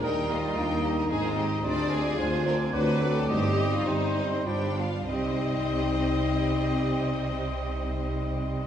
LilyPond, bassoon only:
\new Staff \with { instrumentName = "Bassoon" } { \clef bass \time 3/4 \key c \minor \tempo 4 = 102 g4 bes4 aes4 | g4 f8 f8 fis4 | g4 g4 f8 r8 | g2.~ |
g2. | }